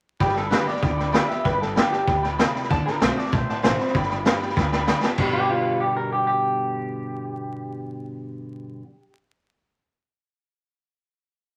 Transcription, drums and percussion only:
0, 0, Header, 1, 2, 480
1, 0, Start_track
1, 0, Key_signature, 1, "major"
1, 0, Tempo, 311203
1, 318, Time_signature, 4, 2, 24, 8
1, 7998, Tempo, 308008
1, 17942, End_track
2, 0, Start_track
2, 0, Title_t, "Drums"
2, 315, Note_on_c, 9, 36, 107
2, 318, Note_on_c, 9, 38, 34
2, 438, Note_off_c, 9, 38, 0
2, 438, Note_on_c, 9, 38, 32
2, 469, Note_off_c, 9, 36, 0
2, 559, Note_off_c, 9, 38, 0
2, 559, Note_on_c, 9, 38, 36
2, 714, Note_off_c, 9, 38, 0
2, 804, Note_on_c, 9, 38, 102
2, 804, Note_on_c, 9, 44, 81
2, 958, Note_off_c, 9, 38, 0
2, 958, Note_off_c, 9, 44, 0
2, 1046, Note_on_c, 9, 38, 38
2, 1171, Note_off_c, 9, 38, 0
2, 1171, Note_on_c, 9, 38, 33
2, 1275, Note_on_c, 9, 36, 105
2, 1287, Note_off_c, 9, 38, 0
2, 1287, Note_on_c, 9, 38, 34
2, 1429, Note_off_c, 9, 36, 0
2, 1441, Note_off_c, 9, 38, 0
2, 1533, Note_on_c, 9, 38, 36
2, 1688, Note_off_c, 9, 38, 0
2, 1762, Note_on_c, 9, 38, 112
2, 1762, Note_on_c, 9, 44, 85
2, 1916, Note_off_c, 9, 38, 0
2, 1916, Note_off_c, 9, 44, 0
2, 2008, Note_on_c, 9, 38, 36
2, 2163, Note_off_c, 9, 38, 0
2, 2239, Note_on_c, 9, 36, 108
2, 2245, Note_on_c, 9, 38, 33
2, 2393, Note_off_c, 9, 36, 0
2, 2399, Note_off_c, 9, 38, 0
2, 2497, Note_on_c, 9, 38, 37
2, 2651, Note_off_c, 9, 38, 0
2, 2733, Note_on_c, 9, 38, 120
2, 2733, Note_on_c, 9, 44, 86
2, 2887, Note_off_c, 9, 38, 0
2, 2887, Note_off_c, 9, 44, 0
2, 2973, Note_on_c, 9, 38, 37
2, 3127, Note_off_c, 9, 38, 0
2, 3201, Note_on_c, 9, 36, 104
2, 3204, Note_on_c, 9, 38, 34
2, 3355, Note_off_c, 9, 36, 0
2, 3358, Note_off_c, 9, 38, 0
2, 3450, Note_on_c, 9, 38, 36
2, 3604, Note_off_c, 9, 38, 0
2, 3693, Note_on_c, 9, 38, 113
2, 3693, Note_on_c, 9, 44, 84
2, 3847, Note_off_c, 9, 38, 0
2, 3847, Note_off_c, 9, 44, 0
2, 3941, Note_on_c, 9, 38, 37
2, 4062, Note_off_c, 9, 38, 0
2, 4062, Note_on_c, 9, 38, 34
2, 4175, Note_on_c, 9, 36, 109
2, 4193, Note_off_c, 9, 38, 0
2, 4193, Note_on_c, 9, 38, 34
2, 4329, Note_off_c, 9, 36, 0
2, 4348, Note_off_c, 9, 38, 0
2, 4434, Note_on_c, 9, 38, 40
2, 4588, Note_off_c, 9, 38, 0
2, 4652, Note_on_c, 9, 38, 116
2, 4652, Note_on_c, 9, 44, 83
2, 4806, Note_off_c, 9, 38, 0
2, 4806, Note_off_c, 9, 44, 0
2, 4911, Note_on_c, 9, 38, 39
2, 5022, Note_off_c, 9, 38, 0
2, 5022, Note_on_c, 9, 38, 32
2, 5135, Note_on_c, 9, 36, 118
2, 5141, Note_off_c, 9, 38, 0
2, 5141, Note_on_c, 9, 38, 37
2, 5289, Note_off_c, 9, 36, 0
2, 5295, Note_off_c, 9, 38, 0
2, 5389, Note_on_c, 9, 38, 35
2, 5543, Note_off_c, 9, 38, 0
2, 5615, Note_on_c, 9, 38, 111
2, 5615, Note_on_c, 9, 44, 90
2, 5769, Note_off_c, 9, 38, 0
2, 5769, Note_off_c, 9, 44, 0
2, 5858, Note_on_c, 9, 38, 35
2, 5975, Note_off_c, 9, 38, 0
2, 5975, Note_on_c, 9, 38, 34
2, 6088, Note_off_c, 9, 38, 0
2, 6088, Note_on_c, 9, 38, 33
2, 6089, Note_on_c, 9, 36, 113
2, 6210, Note_off_c, 9, 38, 0
2, 6210, Note_on_c, 9, 38, 32
2, 6243, Note_off_c, 9, 36, 0
2, 6327, Note_off_c, 9, 38, 0
2, 6327, Note_on_c, 9, 38, 36
2, 6481, Note_off_c, 9, 38, 0
2, 6567, Note_on_c, 9, 38, 113
2, 6567, Note_on_c, 9, 44, 87
2, 6721, Note_off_c, 9, 38, 0
2, 6721, Note_off_c, 9, 44, 0
2, 6812, Note_on_c, 9, 38, 38
2, 6933, Note_off_c, 9, 38, 0
2, 6933, Note_on_c, 9, 38, 33
2, 7047, Note_on_c, 9, 36, 119
2, 7056, Note_off_c, 9, 38, 0
2, 7056, Note_on_c, 9, 38, 65
2, 7201, Note_off_c, 9, 36, 0
2, 7210, Note_off_c, 9, 38, 0
2, 7291, Note_on_c, 9, 38, 65
2, 7445, Note_off_c, 9, 38, 0
2, 7519, Note_on_c, 9, 38, 91
2, 7519, Note_on_c, 9, 44, 87
2, 7673, Note_off_c, 9, 38, 0
2, 7673, Note_off_c, 9, 44, 0
2, 7758, Note_on_c, 9, 38, 89
2, 7913, Note_off_c, 9, 38, 0
2, 7985, Note_on_c, 9, 49, 83
2, 7993, Note_on_c, 9, 36, 102
2, 8141, Note_off_c, 9, 49, 0
2, 8149, Note_off_c, 9, 36, 0
2, 17942, End_track
0, 0, End_of_file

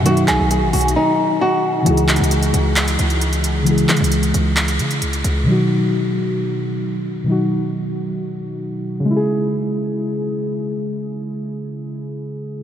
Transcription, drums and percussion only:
0, 0, Header, 1, 2, 480
1, 0, Start_track
1, 0, Key_signature, 4, "minor"
1, 0, Tempo, 451128
1, 60, Time_signature, 4, 2, 24, 8
1, 13439, End_track
2, 0, Start_track
2, 0, Title_t, "Drums"
2, 60, Note_on_c, 9, 42, 77
2, 166, Note_off_c, 9, 42, 0
2, 180, Note_on_c, 9, 42, 54
2, 287, Note_off_c, 9, 42, 0
2, 300, Note_on_c, 9, 39, 94
2, 300, Note_on_c, 9, 42, 76
2, 406, Note_off_c, 9, 39, 0
2, 406, Note_off_c, 9, 42, 0
2, 540, Note_on_c, 9, 42, 93
2, 646, Note_off_c, 9, 42, 0
2, 780, Note_on_c, 9, 42, 45
2, 780, Note_on_c, 9, 46, 83
2, 860, Note_off_c, 9, 42, 0
2, 860, Note_on_c, 9, 42, 61
2, 886, Note_off_c, 9, 46, 0
2, 940, Note_off_c, 9, 42, 0
2, 940, Note_on_c, 9, 42, 76
2, 1046, Note_off_c, 9, 42, 0
2, 1981, Note_on_c, 9, 42, 79
2, 2087, Note_off_c, 9, 42, 0
2, 2100, Note_on_c, 9, 42, 55
2, 2207, Note_off_c, 9, 42, 0
2, 2220, Note_on_c, 9, 39, 95
2, 2220, Note_on_c, 9, 42, 45
2, 2300, Note_off_c, 9, 42, 0
2, 2300, Note_on_c, 9, 42, 60
2, 2326, Note_off_c, 9, 39, 0
2, 2380, Note_off_c, 9, 42, 0
2, 2380, Note_on_c, 9, 42, 74
2, 2460, Note_off_c, 9, 42, 0
2, 2460, Note_on_c, 9, 42, 89
2, 2566, Note_off_c, 9, 42, 0
2, 2580, Note_on_c, 9, 42, 63
2, 2687, Note_off_c, 9, 42, 0
2, 2701, Note_on_c, 9, 42, 80
2, 2807, Note_off_c, 9, 42, 0
2, 2940, Note_on_c, 9, 42, 81
2, 2941, Note_on_c, 9, 39, 106
2, 3047, Note_off_c, 9, 39, 0
2, 3047, Note_off_c, 9, 42, 0
2, 3060, Note_on_c, 9, 42, 67
2, 3167, Note_off_c, 9, 42, 0
2, 3180, Note_on_c, 9, 42, 64
2, 3286, Note_off_c, 9, 42, 0
2, 3300, Note_on_c, 9, 42, 52
2, 3406, Note_off_c, 9, 42, 0
2, 3420, Note_on_c, 9, 42, 79
2, 3526, Note_off_c, 9, 42, 0
2, 3540, Note_on_c, 9, 42, 58
2, 3646, Note_off_c, 9, 42, 0
2, 3659, Note_on_c, 9, 42, 85
2, 3766, Note_off_c, 9, 42, 0
2, 3899, Note_on_c, 9, 42, 77
2, 4006, Note_off_c, 9, 42, 0
2, 4019, Note_on_c, 9, 42, 53
2, 4126, Note_off_c, 9, 42, 0
2, 4139, Note_on_c, 9, 39, 92
2, 4139, Note_on_c, 9, 42, 44
2, 4219, Note_off_c, 9, 42, 0
2, 4219, Note_on_c, 9, 42, 57
2, 4245, Note_off_c, 9, 39, 0
2, 4299, Note_off_c, 9, 42, 0
2, 4299, Note_on_c, 9, 42, 73
2, 4380, Note_off_c, 9, 42, 0
2, 4380, Note_on_c, 9, 42, 90
2, 4486, Note_off_c, 9, 42, 0
2, 4500, Note_on_c, 9, 42, 61
2, 4606, Note_off_c, 9, 42, 0
2, 4620, Note_on_c, 9, 42, 80
2, 4726, Note_off_c, 9, 42, 0
2, 4860, Note_on_c, 9, 39, 104
2, 4860, Note_on_c, 9, 42, 80
2, 4966, Note_off_c, 9, 42, 0
2, 4967, Note_off_c, 9, 39, 0
2, 4980, Note_on_c, 9, 42, 65
2, 5086, Note_off_c, 9, 42, 0
2, 5100, Note_on_c, 9, 42, 64
2, 5206, Note_off_c, 9, 42, 0
2, 5220, Note_on_c, 9, 42, 51
2, 5326, Note_off_c, 9, 42, 0
2, 5340, Note_on_c, 9, 42, 81
2, 5446, Note_off_c, 9, 42, 0
2, 5460, Note_on_c, 9, 42, 58
2, 5566, Note_off_c, 9, 42, 0
2, 5580, Note_on_c, 9, 42, 85
2, 5686, Note_off_c, 9, 42, 0
2, 13439, End_track
0, 0, End_of_file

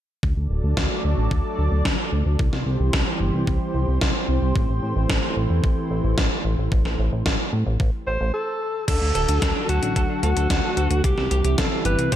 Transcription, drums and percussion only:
0, 0, Header, 1, 2, 480
1, 0, Start_track
1, 0, Tempo, 540541
1, 206, Time_signature, 4, 2, 24, 8
1, 10796, End_track
2, 0, Start_track
2, 0, Title_t, "Drums"
2, 205, Note_on_c, 9, 36, 108
2, 294, Note_off_c, 9, 36, 0
2, 684, Note_on_c, 9, 38, 106
2, 685, Note_on_c, 9, 36, 107
2, 773, Note_off_c, 9, 38, 0
2, 774, Note_off_c, 9, 36, 0
2, 1165, Note_on_c, 9, 36, 103
2, 1254, Note_off_c, 9, 36, 0
2, 1645, Note_on_c, 9, 36, 108
2, 1645, Note_on_c, 9, 38, 109
2, 1734, Note_off_c, 9, 36, 0
2, 1734, Note_off_c, 9, 38, 0
2, 2125, Note_on_c, 9, 36, 112
2, 2214, Note_off_c, 9, 36, 0
2, 2245, Note_on_c, 9, 38, 35
2, 2334, Note_off_c, 9, 38, 0
2, 2604, Note_on_c, 9, 38, 111
2, 2605, Note_on_c, 9, 36, 114
2, 2693, Note_off_c, 9, 36, 0
2, 2693, Note_off_c, 9, 38, 0
2, 3085, Note_on_c, 9, 36, 107
2, 3174, Note_off_c, 9, 36, 0
2, 3565, Note_on_c, 9, 36, 114
2, 3565, Note_on_c, 9, 38, 109
2, 3653, Note_off_c, 9, 38, 0
2, 3654, Note_off_c, 9, 36, 0
2, 4045, Note_on_c, 9, 36, 117
2, 4134, Note_off_c, 9, 36, 0
2, 4525, Note_on_c, 9, 36, 116
2, 4525, Note_on_c, 9, 38, 113
2, 4614, Note_off_c, 9, 36, 0
2, 4614, Note_off_c, 9, 38, 0
2, 5005, Note_on_c, 9, 36, 112
2, 5094, Note_off_c, 9, 36, 0
2, 5485, Note_on_c, 9, 36, 119
2, 5485, Note_on_c, 9, 38, 113
2, 5574, Note_off_c, 9, 36, 0
2, 5574, Note_off_c, 9, 38, 0
2, 5965, Note_on_c, 9, 36, 112
2, 6054, Note_off_c, 9, 36, 0
2, 6085, Note_on_c, 9, 38, 36
2, 6174, Note_off_c, 9, 38, 0
2, 6445, Note_on_c, 9, 36, 115
2, 6445, Note_on_c, 9, 38, 113
2, 6534, Note_off_c, 9, 36, 0
2, 6534, Note_off_c, 9, 38, 0
2, 6925, Note_on_c, 9, 36, 109
2, 7014, Note_off_c, 9, 36, 0
2, 7885, Note_on_c, 9, 36, 110
2, 7886, Note_on_c, 9, 42, 93
2, 7886, Note_on_c, 9, 49, 92
2, 7974, Note_off_c, 9, 36, 0
2, 7975, Note_off_c, 9, 42, 0
2, 7975, Note_off_c, 9, 49, 0
2, 8126, Note_on_c, 9, 42, 65
2, 8215, Note_off_c, 9, 42, 0
2, 8246, Note_on_c, 9, 42, 69
2, 8335, Note_off_c, 9, 42, 0
2, 8365, Note_on_c, 9, 36, 119
2, 8366, Note_on_c, 9, 38, 110
2, 8366, Note_on_c, 9, 42, 92
2, 8454, Note_off_c, 9, 36, 0
2, 8455, Note_off_c, 9, 38, 0
2, 8455, Note_off_c, 9, 42, 0
2, 8606, Note_on_c, 9, 42, 64
2, 8695, Note_off_c, 9, 42, 0
2, 8725, Note_on_c, 9, 42, 66
2, 8814, Note_off_c, 9, 42, 0
2, 8845, Note_on_c, 9, 36, 108
2, 8846, Note_on_c, 9, 42, 86
2, 8934, Note_off_c, 9, 36, 0
2, 8934, Note_off_c, 9, 42, 0
2, 9085, Note_on_c, 9, 42, 65
2, 9174, Note_off_c, 9, 42, 0
2, 9205, Note_on_c, 9, 42, 66
2, 9294, Note_off_c, 9, 42, 0
2, 9325, Note_on_c, 9, 36, 113
2, 9325, Note_on_c, 9, 38, 111
2, 9325, Note_on_c, 9, 42, 91
2, 9414, Note_off_c, 9, 36, 0
2, 9414, Note_off_c, 9, 38, 0
2, 9414, Note_off_c, 9, 42, 0
2, 9565, Note_on_c, 9, 42, 69
2, 9653, Note_off_c, 9, 42, 0
2, 9684, Note_on_c, 9, 42, 71
2, 9773, Note_off_c, 9, 42, 0
2, 9804, Note_on_c, 9, 42, 95
2, 9805, Note_on_c, 9, 36, 121
2, 9893, Note_off_c, 9, 42, 0
2, 9894, Note_off_c, 9, 36, 0
2, 9924, Note_on_c, 9, 38, 36
2, 10013, Note_off_c, 9, 38, 0
2, 10044, Note_on_c, 9, 42, 68
2, 10133, Note_off_c, 9, 42, 0
2, 10163, Note_on_c, 9, 42, 70
2, 10252, Note_off_c, 9, 42, 0
2, 10283, Note_on_c, 9, 38, 117
2, 10283, Note_on_c, 9, 42, 88
2, 10285, Note_on_c, 9, 36, 116
2, 10372, Note_off_c, 9, 38, 0
2, 10372, Note_off_c, 9, 42, 0
2, 10374, Note_off_c, 9, 36, 0
2, 10523, Note_on_c, 9, 42, 67
2, 10612, Note_off_c, 9, 42, 0
2, 10644, Note_on_c, 9, 42, 65
2, 10733, Note_off_c, 9, 42, 0
2, 10763, Note_on_c, 9, 42, 90
2, 10765, Note_on_c, 9, 36, 119
2, 10796, Note_off_c, 9, 36, 0
2, 10796, Note_off_c, 9, 42, 0
2, 10796, End_track
0, 0, End_of_file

